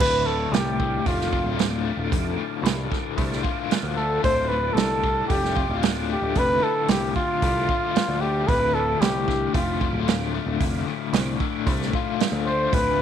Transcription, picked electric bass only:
0, 0, Header, 1, 2, 480
1, 0, Start_track
1, 0, Key_signature, -1, "minor"
1, 0, Tempo, 530504
1, 1915, Time_signature, 4, 2, 24, 8
1, 11780, End_track
2, 0, Start_track
2, 0, Title_t, "Picked electric bass"
2, 0, Program_c, 0, 34
2, 1, Note_on_c, 0, 26, 83
2, 413, Note_off_c, 0, 26, 0
2, 467, Note_on_c, 0, 36, 92
2, 885, Note_off_c, 0, 36, 0
2, 962, Note_on_c, 0, 29, 73
2, 1270, Note_off_c, 0, 29, 0
2, 1303, Note_on_c, 0, 26, 92
2, 1723, Note_off_c, 0, 26, 0
2, 1783, Note_on_c, 0, 26, 76
2, 1892, Note_off_c, 0, 26, 0
2, 1919, Note_on_c, 0, 29, 88
2, 2124, Note_off_c, 0, 29, 0
2, 2381, Note_on_c, 0, 36, 109
2, 2594, Note_off_c, 0, 36, 0
2, 2872, Note_on_c, 0, 36, 94
2, 3081, Note_off_c, 0, 36, 0
2, 3465, Note_on_c, 0, 38, 72
2, 3780, Note_off_c, 0, 38, 0
2, 3837, Note_on_c, 0, 26, 89
2, 4250, Note_off_c, 0, 26, 0
2, 4296, Note_on_c, 0, 36, 99
2, 4718, Note_off_c, 0, 36, 0
2, 4794, Note_on_c, 0, 29, 78
2, 5105, Note_off_c, 0, 29, 0
2, 5150, Note_on_c, 0, 26, 97
2, 5566, Note_off_c, 0, 26, 0
2, 5627, Note_on_c, 0, 26, 81
2, 5733, Note_off_c, 0, 26, 0
2, 5751, Note_on_c, 0, 29, 92
2, 5959, Note_off_c, 0, 29, 0
2, 6232, Note_on_c, 0, 36, 88
2, 6439, Note_off_c, 0, 36, 0
2, 6715, Note_on_c, 0, 36, 86
2, 6921, Note_off_c, 0, 36, 0
2, 7315, Note_on_c, 0, 38, 76
2, 7624, Note_off_c, 0, 38, 0
2, 7675, Note_on_c, 0, 26, 90
2, 8088, Note_off_c, 0, 26, 0
2, 8153, Note_on_c, 0, 36, 94
2, 8567, Note_off_c, 0, 36, 0
2, 8635, Note_on_c, 0, 29, 87
2, 8944, Note_off_c, 0, 29, 0
2, 8982, Note_on_c, 0, 26, 88
2, 9401, Note_off_c, 0, 26, 0
2, 9467, Note_on_c, 0, 26, 93
2, 9572, Note_off_c, 0, 26, 0
2, 9594, Note_on_c, 0, 29, 86
2, 9800, Note_off_c, 0, 29, 0
2, 10069, Note_on_c, 0, 36, 101
2, 10277, Note_off_c, 0, 36, 0
2, 10554, Note_on_c, 0, 36, 98
2, 10760, Note_off_c, 0, 36, 0
2, 11147, Note_on_c, 0, 38, 88
2, 11459, Note_off_c, 0, 38, 0
2, 11515, Note_on_c, 0, 26, 95
2, 11780, Note_off_c, 0, 26, 0
2, 11780, End_track
0, 0, End_of_file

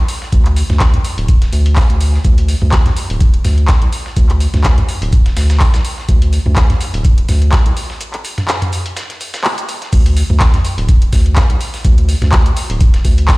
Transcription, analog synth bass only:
0, 0, Header, 1, 2, 480
1, 0, Start_track
1, 0, Tempo, 480000
1, 326, Time_signature, 4, 2, 24, 8
1, 13376, End_track
2, 0, Start_track
2, 0, Title_t, "Analog synth bass"
2, 0, Program_c, 0, 38
2, 326, Note_on_c, 0, 38, 101
2, 628, Note_off_c, 0, 38, 0
2, 698, Note_on_c, 0, 38, 83
2, 988, Note_off_c, 0, 38, 0
2, 1177, Note_on_c, 0, 26, 100
2, 1468, Note_off_c, 0, 26, 0
2, 1526, Note_on_c, 0, 38, 101
2, 1828, Note_off_c, 0, 38, 0
2, 1898, Note_on_c, 0, 38, 84
2, 2189, Note_off_c, 0, 38, 0
2, 2247, Note_on_c, 0, 38, 102
2, 2548, Note_off_c, 0, 38, 0
2, 2618, Note_on_c, 0, 38, 86
2, 2909, Note_off_c, 0, 38, 0
2, 3099, Note_on_c, 0, 26, 103
2, 3389, Note_off_c, 0, 26, 0
2, 3447, Note_on_c, 0, 38, 84
2, 3748, Note_off_c, 0, 38, 0
2, 3818, Note_on_c, 0, 36, 79
2, 3890, Note_off_c, 0, 36, 0
2, 4167, Note_on_c, 0, 38, 97
2, 4468, Note_off_c, 0, 38, 0
2, 4538, Note_on_c, 0, 38, 83
2, 4829, Note_off_c, 0, 38, 0
2, 5017, Note_on_c, 0, 26, 100
2, 5308, Note_off_c, 0, 26, 0
2, 5366, Note_on_c, 0, 38, 84
2, 5668, Note_off_c, 0, 38, 0
2, 5739, Note_on_c, 0, 36, 79
2, 5811, Note_off_c, 0, 36, 0
2, 6087, Note_on_c, 0, 38, 99
2, 6388, Note_off_c, 0, 38, 0
2, 6459, Note_on_c, 0, 38, 86
2, 6749, Note_off_c, 0, 38, 0
2, 6938, Note_on_c, 0, 26, 102
2, 7229, Note_off_c, 0, 26, 0
2, 7286, Note_on_c, 0, 38, 86
2, 7588, Note_off_c, 0, 38, 0
2, 7657, Note_on_c, 0, 36, 81
2, 7730, Note_off_c, 0, 36, 0
2, 9928, Note_on_c, 0, 38, 103
2, 10229, Note_off_c, 0, 38, 0
2, 10299, Note_on_c, 0, 38, 86
2, 10589, Note_off_c, 0, 38, 0
2, 10778, Note_on_c, 0, 26, 102
2, 11069, Note_off_c, 0, 26, 0
2, 11127, Note_on_c, 0, 38, 87
2, 11428, Note_off_c, 0, 38, 0
2, 11499, Note_on_c, 0, 36, 83
2, 11571, Note_off_c, 0, 36, 0
2, 11847, Note_on_c, 0, 38, 99
2, 12149, Note_off_c, 0, 38, 0
2, 12218, Note_on_c, 0, 38, 85
2, 12509, Note_off_c, 0, 38, 0
2, 12699, Note_on_c, 0, 26, 104
2, 12989, Note_off_c, 0, 26, 0
2, 13047, Note_on_c, 0, 38, 87
2, 13349, Note_off_c, 0, 38, 0
2, 13376, End_track
0, 0, End_of_file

